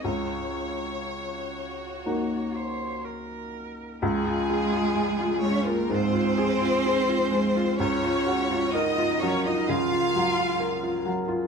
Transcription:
<<
  \new Staff \with { instrumentName = "Violin section" } { \time 4/4 \key des \major \tempo 4 = 63 des''2. r4 | aes'4. des''16 bes'16 c''2 | des''4 ees''8 des''16 ees''16 f''4. r8 | }
  \new Staff \with { instrumentName = "Felt piano" } { \time 4/4 \key des \major des,2 <bes ees' ges'>2 | des,16 f'16 aes'16 f'16 aes'16 f'16 aes16 f'16 aes,16 f'16 aes'16 f'16 aes'16 f'16 aes16 f'16 | des,16 f'16 ges'16 f'16 bes'16 f'16 ges16 f'16 des16 f'16 ges16 f'16 bes'16 f'16 ges16 f'16 | }
  \new Staff \with { instrumentName = "Cello" } { \time 4/4 \key des \major ges'4 ges'4. c''8 bes'4 | aes4. des'16 bes16 c'2 | des'4 ees'8 des'16 ees'16 f'4. r8 | }
>>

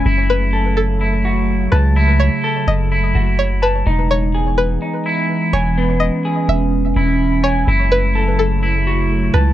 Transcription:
<<
  \new Staff \with { instrumentName = "Synth pluck" } { \time 4/4 \key fis \dorian \tempo 4 = 126 r8 b'4 a'2 b'8 | r8 cis''4 dis''4. cis''8 b'8 | r8 cis''4 b'2 cis''8 | r8 dis''4 e''2 cis''8 |
r8 b'4 a'2 b'8 | }
  \new Staff \with { instrumentName = "Clean electric guitar" } { \time 4/4 \key fis \dorian e'4 a'4 e'8 fis'4 a''8 | e'4 a'4 e'8 fis'4 a''8 | dis'4 gis'4 dis'8 e'4 gis''8 | b4 gis'4. e'4 gis''8 |
e'4 a'4 e'8 fis'4 a''8 | }
  \new Staff \with { instrumentName = "Ambient pad" } { \clef bass \time 4/4 \key fis \dorian << { a1~ | a1 | b1 | cis'1 |
<a e'>1 | } \\ { <cis fis>1~ | <cis fis>1 | <e gis>1~ | <e gis>1 |
<cis fis>1 | } >> }
  \new Staff \with { instrumentName = "808-style bass" } { \clef bass \time 4/4 \key fis \dorian fis,,2.~ fis,,8 cis,8~ | cis,8. r8. fis,,4 fis,,4. | e,,2 r4. e,,8~ | e,,8. r8. e,,4 e,,4. |
fis,,2.~ fis,,8 cis,8 | }
>>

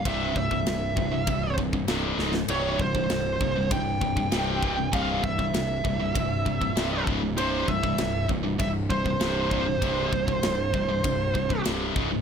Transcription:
<<
  \new Staff \with { instrumentName = "Lead electric guitar" } { \time 4/4 \key c \major \tempo 4 = 98 e''8 e''2 r4. | des''8 c''4. g''2 | f''8 e''2. r8 | c''8 e''4 r8 e''8 c''4.~ |
c''2. r4 | }
  \new Staff \with { instrumentName = "Distorted electric guitar" } { \clef bass \time 4/4 \key c \major <c, g, c>8 <c, g,>16 <c, g,>16 <c, g,>8 <c, g,>16 <c, g,>16 <c, g,>8 <c, g,>16 <c, g,>16 <c, g, c>8 <des, aes, des>16 <des, aes,>16 | <c, g, c>8 <c, g,>16 <c, g,>16 <c, g,>8 <c, g,>16 <c, g,>16 <c, g,>8 <c, g,>16 <c, g,>16 <c, g, c>8 <c, g, c>16 <c, g,>16 | <c, g, c>8 <c, g,>16 <c, g,>16 <c, g,>8 <c, g,>16 <c, g,>16 <c, g,>8 <c, g,>16 <c, g,>16 <c, g, c>8 <des, aes, des>16 <des, aes,>16 | <c, g, c>8 <c, g,>16 <c, g,>16 <c, g,>8 <c, g,>16 <c, g,>16 <c, g,>8 <c, g,>16 <c, g,>16 <c, g, c>8 <c, g, c>16 <c, g,>16 |
<c, g, c>8 <c, g,>16 <c, g,>16 <c, g,>8 <c, g,>16 <c, g,>16 <c, g,>8 <c, g,>16 <c, g,>16 <c, g, c>8 <des, aes, des>16 <des, aes,>16 | }
  \new Staff \with { instrumentName = "Distorted electric guitar" } { \clef bass \time 4/4 \key c \major <c, g, c>8 <c, g,>16 <c, g,>16 <c, g,>8 <c, g,>16 <c, g,>16 <c, g,>8 <c, g,>16 <c, g,>16 <c, g, c>8 <des, aes, des>16 <des, aes,>16 | <c, g, c>8 <c, g,>16 <c, g,>16 <c, g,>8 <c, g,>16 <c, g,>16 <c, g,>8 <c, g,>16 <c, g,>16 <c, g, c>8 <c, g, c>16 <c, g,>16 | <c, g, c>8 <c, g,>16 <c, g,>16 <c, g,>8 <c, g,>16 <c, g,>16 <c, g,>8 <c, g,>16 <c, g,>16 <c, g, c>8 <des, aes, des>16 <des, aes,>16 | <c, g, c>8 <c, g,>16 <c, g,>16 <c, g,>8 <c, g,>16 <c, g,>16 <c, g,>8 <c, g,>16 <c, g,>16 <c, g, c>8 <c, g, c>16 <c, g,>16 |
<c, g, c>8 <c, g,>16 <c, g,>16 <c, g,>8 <c, g,>16 <c, g,>16 <c, g,>8 <c, g,>16 <c, g,>16 <c, g, c>8 <des, aes, des>16 <des, aes,>16 | }
  \new Staff \with { instrumentName = "Fingered electric bass" } { \clef bass \time 4/4 \key c \major c,,8 c,,8 c,,8 c,,8 c,,4 c,,8 des,,8 | c,,8 c,,8 c,,8 c,,8 c,,4 c,,4 | c,,8 c,,8 c,,8 c,,8 c,,4 c,,8 des,,8 | c,,8 c,,8 c,,8 c,,8 c,,4 c,,4 |
c,,8 c,,8 c,,8 c,,8 c,,4 c,,8 des,,8 | }
  \new DrumStaff \with { instrumentName = "Drums" } \drummode { \time 4/4 <bd rb>8 bd16 bd16 <rb sn>8 bd8 <bd rb>8 bd16 bd16 <rb sn>8 sn16 sn16 | rb8 bd16 bd16 <rb sn>8 bd8 <bd rb>8 bd16 bd16 <rb sn>8 bd8 | <bd rb>8 bd16 bd16 <rb sn>8 bd8 <bd rb>8 bd16 bd16 <rb sn>8 bd8 | rb8 bd16 bd16 <rb sn>8 bd8 <bd rb>8 bd16 bd16 <rb sn>8 bd8 |
<bd rb>8 bd16 bd16 <rb sn>8 bd8 <bd rb>8 bd16 bd16 <rb sn>8 bd8 | }
>>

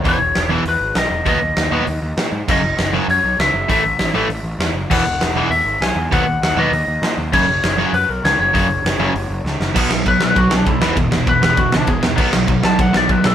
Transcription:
<<
  \new Staff \with { instrumentName = "Lead electric guitar" } { \time 4/4 \key fis \mixolydian \tempo 4 = 198 cis''4. r8 b'4 dis''4 | dis''2.~ dis''8 r8 | dis''4. r8 cis''4 e''4 | e''2.~ e''8 r8 |
fis''2 e''4 gis''4 | fis''4 fis''8 dis''2 r8 | cis''2 b'8 ais'8 cis''8 cis''8~ | cis''2. r4 |
\key e \major r4 b'8 b'8 fis'8 d'8 e'8 r8 | r4 b'8 b'8 fis'8 d'8 gis'8 r8 | r4. a''8 fis''8 d''8 b'8 a'8 | }
  \new Staff \with { instrumentName = "Overdriven electric guitar" } { \clef bass \time 4/4 \key fis \mixolydian <e, b, e>8 r4 <e, b, e>8 r2 | <b, fis b>8 r4 <b, fis b>8 r2 | <fis, cis fis>8 r4 <fis, cis fis>8 r2 | <a, e a>8 r4 <a, e a>8 r2 |
<e, b, e>8 r4 <e, b, e>8 r2 | <b, fis b>8 r4 <b, fis b>8 r2 | <fis, cis fis>8 r4 <fis, cis fis>8 r2 | <fis, cis fis>8 r4 <fis, cis fis>8 r2 |
\key e \major <b, fis b>8 <b, fis>8 <b, fis>8 <b, fis>8 <b, fis>8 <b, fis>8 <b, fis>8 <e, b, e>8 | <e, b,>8 <e, b,>8 <e, b,>8 <e, b,>8 <e, b,>8 <e, b,>8 <e, b,>8 <e, b,>8 | <b, fis b>8 <b, fis>8 <b, fis>8 <b, fis>8 <b, fis>8 <b, fis>8 <b, fis>8 <b, fis>8 | }
  \new Staff \with { instrumentName = "Overdriven electric guitar" } { \clef bass \time 4/4 \key fis \mixolydian <e, b, e>8 r4 <e, b, e>8 r2 | <b, fis b>8 r4 <b, fis b>8 r2 | <fis, cis fis>8 r4 <fis, cis fis>8 r2 | <a, e a>8 r4 <a, e a>8 r2 |
<e, b, e>8 r4 <e, b, e>8 r2 | <b, fis b>8 r4 <b, fis b>8 r2 | <fis, cis fis>8 r4 <fis, cis fis>8 r2 | <fis, cis fis>8 r4 <fis, cis fis>8 r2 |
\key e \major <b, fis b>8 <b, fis>8 <b, fis>8 <b, fis>8 <b, fis>8 <b, fis>8 <b, fis>8 <e, b, e>8 | <e, b,>8 <e, b,>8 <e, b,>8 <e, b,>8 <e, b,>8 <e, b,>8 <e, b,>8 <e, b,>8 | <b, fis b>8 <b, fis>8 <b, fis>8 <b, fis>8 <b, fis>8 <b, fis>8 <b, fis>8 <b, fis>8 | }
  \new Staff \with { instrumentName = "Picked electric bass" } { \clef bass \time 4/4 \key fis \mixolydian e,,8 e,,8 e,,4 e,8 gis,,8 b,,8 e,,8 | dis,8 dis,8 dis,8 dis,8 dis,8 dis,8 ais,8 gis,8 | fis,,8 fis,,8 fis,,4 fis,8 b,,8 cis,8 fis,,8 | a,,8 a,,8 a,,8 a,,8 a,,8 a,,8 e,8 fis,,8 |
e,,8 e,,8 e,,4 e,8 gis,,8 b,,8 e,8 | dis,8 dis,8 dis,8 dis,8 dis,8 dis,8 ais,8 dis,8 | fis,,8 fis,,8 fis,,4 fis,8 b,,8 cis,8 fis,,8 | fis,,8 fis,,8 fis,,8 fis,,8 fis,,8 fis,,8 cis,8 fis,,8 |
\key e \major b,,8 b,,8 b,,8 b,,8 b,,8 b,,8 b,,8 e,,8 | e,,8 e,,8 e,,8 e,,8 e,,8 cis,8 e,,8 e,,8 | b,,8 b,,8 b,,8 b,,8 b,,8 b,,8 b,,8 b,,8 | }
  \new DrumStaff \with { instrumentName = "Drums" } \drummode { \time 4/4 <hho bd>4 <hho sn>4 hho4 <hho sn>4 | <hho bd>4 <hho sn>4 hho4 <hho sn>4 | <cymc bd>4 <hho sn>4 hho4 <hho sn>4 | <hho bd>4 <hho sn>4 hho4 <hho sn>4 |
<cymc bd>4 <hho sn>4 hho4 <hho sn>4 | <hho bd>4 <hho sn>4 hho4 <hho sn>4 | <cymc bd>4 <hho sn>4 hho4 <hho sn>4 | <hho bd>4 <hho sn>4 hho4 sn8 sn8 |
<cymc bd>8 sn8 <bd cymr>8 sn8 <bd cymr>8 sn8 <bd cymr>8 sn8 | <bd cymr>8 sn8 <bd cymr>8 sn8 <bd cymr>8 sn8 <bd cymr>8 sn8 | <cymc bd>8 sn8 <bd cymr>8 sn8 <bd cymr>8 sn8 <bd cymr>8 sn8 | }
>>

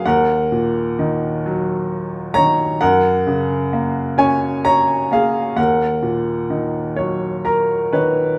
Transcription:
<<
  \new Staff \with { instrumentName = "Upright piano" } { \time 6/8 \key dis \minor \tempo 4. = 43 << { fis''2~ fis''8 ais''8 | fis''4. gis''8 ais''8 eis''8 | fis''4. cis''8 <ais' ais''>8 <b' cis''>8 | } \\ { ais'2~ ais'8 cis''8 | ais'4. cis''8 cis''8 gis'8 | ais'2~ ais'8 r8 | } >> }
  \new Staff \with { instrumentName = "Upright piano" } { \clef bass \time 6/8 \key dis \minor dis,8 ais,8 dis8 fis4 dis8 | fis,8 cis8 ais8 cis'4 ais8 | dis,8 ais,8 dis8 fis4 dis8 | }
>>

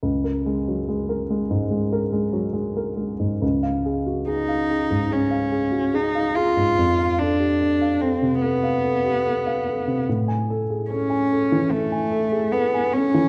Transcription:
<<
  \new Staff \with { instrumentName = "Grand piano" } { \time 4/4 \key f \phrygian \tempo 4 = 73 des,16 bes'16 aes16 ges16 aes16 bes'16 aes16 aes,16 aes16 bes'16 aes16 ges16 aes16 bes'16 aes16 aes,16 | des,16 f''16 aes'16 ges'16 aes'16 f''16 aes'16 aes,16 aes'16 f''16 aes'16 ges'16 aes'16 f''16 aes'16 aes,16 | f,16 f''16 a'16 g'16 a'16 f''16 a'16 c16 a'16 f''16 a'16 g'16 a'16 f''16 a'16 c16 | a,16 gis''16 a'16 gis'16 a'16 gis''16 a'16 e16 a'16 gis''16 a'16 gis'16 a'16 gis''16 a'16 e16 | }
  \new Staff \with { instrumentName = "Cello" } { \time 4/4 \key f \phrygian r1 | r4 ees'4 des'4 ees'8 f'8~ | f'8 d'4 c'8 ces'2 | r4 cis'4 a4 ces'8 cis'8 | }
>>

